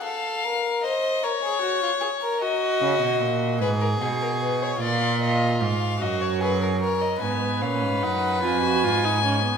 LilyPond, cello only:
\new Staff \with { instrumentName = "Cello" } { \clef bass \time 6/8 \key ees \minor \tempo 4. = 50 r2. | r8 des16 ces16 bes,8 aes,8 ces4 | bes,4 aes,8 ges,4. | \key gis \dorian gis,8 ais,16 gis,16 fis,8 eis,8 gis,4 | }